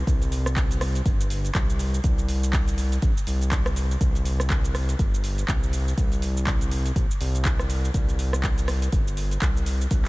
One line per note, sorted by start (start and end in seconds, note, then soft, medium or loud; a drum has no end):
0.07 1.01 C2 loud
0.07 kick loud
0.07 closed hi-hat medium
0.07 shaker medium
0.22 closed hi-hat soft
0.22 shaker medium
0.32 open hi-hat medium
0.32 shaker medium
0.46 cross-stick medium
0.46 shaker loud
0.56 kick loud
0.56 clap loud
0.56 closed hi-hat medium
0.56 shaker medium
0.71 closed hi-hat soft
0.71 shaker loud
0.81 cross-stick medium
0.81 open hi-hat medium
0.81 shaker medium
0.95 closed hi-hat soft
0.95 shaker medium
1.06 1.50 G1 medium
1.06 kick loud
1.06 closed hi-hat medium
1.06 shaker medium
1.21 shaker loud
1.30 open hi-hat medium
1.30 shaker medium
1.45 closed hi-hat soft
1.45 shaker medium
1.55 2.00 C2 medium
1.55 kick loud
1.55 clap loud
1.55 closed hi-hat medium
1.55 shaker loud
1.70 shaker medium
1.79 open hi-hat medium
1.79 shaker loud
1.94 shaker medium
2.04 2.98 C2 loud
2.04 kick loud
2.04 closed hi-hat medium
2.04 shaker medium
2.18 closed hi-hat soft
2.18 shaker medium
2.29 open hi-hat medium
2.29 shaker medium
2.44 shaker loud
2.53 kick loud
2.53 clap loud
2.53 closed hi-hat medium
2.53 shaker medium
2.68 closed hi-hat soft
2.68 shaker loud
2.78 open hi-hat medium
2.78 shaker medium
2.92 closed hi-hat soft
2.92 shaker medium
3.02 3.13 A#1 medium
3.02 kick loud
3.02 closed hi-hat medium
3.02 shaker medium
3.17 shaker loud
3.27 3.96 C2 medium
3.27 open hi-hat medium
3.27 shaker medium
3.41 closed hi-hat soft
3.41 shaker medium
3.52 kick loud
3.52 clap loud
3.52 closed hi-hat medium
3.52 shaker loud
3.66 cross-stick loud
3.66 closed hi-hat soft
3.66 shaker medium
3.76 open hi-hat medium
3.76 shaker loud
3.91 shaker medium
4.01 4.95 C2 loud
4.01 kick loud
4.01 closed hi-hat medium
4.01 shaker medium
4.15 closed hi-hat soft
4.15 shaker medium
4.25 open hi-hat medium
4.25 shaker medium
4.40 cross-stick medium
4.40 shaker loud
4.50 kick loud
4.50 clap loud
4.50 closed hi-hat medium
4.50 shaker medium
4.64 closed hi-hat soft
4.64 shaker loud
4.75 cross-stick medium
4.75 open hi-hat medium
4.75 shaker medium
4.89 closed hi-hat soft
4.89 shaker medium
4.99 5.44 G1 medium
4.99 kick loud
4.99 closed hi-hat medium
4.99 shaker medium
5.14 shaker medium
5.24 open hi-hat medium
5.24 shaker medium
5.38 closed hi-hat soft
5.38 shaker medium
5.48 5.93 C2 medium
5.48 kick loud
5.48 clap loud
5.48 closed hi-hat medium
5.48 shaker medium
5.63 shaker medium
5.73 open hi-hat medium
5.73 shaker loud
5.88 shaker medium
5.98 6.91 C2 loud
5.98 kick loud
5.98 closed hi-hat medium
5.98 shaker medium
6.12 closed hi-hat soft
6.12 shaker medium
6.22 open hi-hat medium
6.22 shaker medium
6.37 shaker loud
6.47 kick loud
6.47 clap loud
6.47 closed hi-hat medium
6.47 shaker medium
6.61 closed hi-hat soft
6.61 shaker medium
6.71 open hi-hat medium
6.71 shaker soft
6.86 closed hi-hat soft
6.86 shaker medium
6.96 7.06 A#1 medium
6.96 kick loud
6.96 closed hi-hat medium
6.96 shaker medium
7.11 shaker medium
7.21 7.90 C2 loud
7.21 open hi-hat medium
7.21 shaker medium
7.35 closed hi-hat soft
7.35 shaker medium
7.45 kick loud
7.45 clap loud
7.45 closed hi-hat medium
7.45 shaker medium
7.59 cross-stick medium
7.59 shaker medium
7.70 open hi-hat medium
7.70 shaker medium
7.85 shaker medium
7.94 8.88 C2 loud
7.94 kick loud
7.94 closed hi-hat medium
7.94 shaker medium
8.09 closed hi-hat soft
8.09 shaker soft
8.19 open hi-hat medium
8.19 shaker soft
8.33 cross-stick medium
8.33 shaker medium
8.43 kick loud
8.43 clap loud
8.43 closed hi-hat medium
8.43 shaker medium
8.58 closed hi-hat soft
8.58 shaker medium
8.68 cross-stick medium
8.68 open hi-hat medium
8.68 shaker soft
8.82 closed hi-hat soft
8.82 shaker soft
8.92 9.37 G1 medium
8.92 kick loud
8.92 closed hi-hat medium
8.92 shaker soft
9.08 shaker medium
9.17 open hi-hat loud
9.17 shaker medium
9.31 closed hi-hat soft
9.31 shaker medium
9.42 9.87 C2 medium
9.42 kick loud
9.42 clap loud
9.42 closed hi-hat medium
9.42 shaker medium
9.57 shaker medium
9.66 open hi-hat medium
9.66 shaker medium
9.81 shaker soft
9.91 10.09 C2 loud
9.91 kick loud
9.91 closed hi-hat medium
9.91 shaker medium
10.05 clap soft
10.05 closed hi-hat soft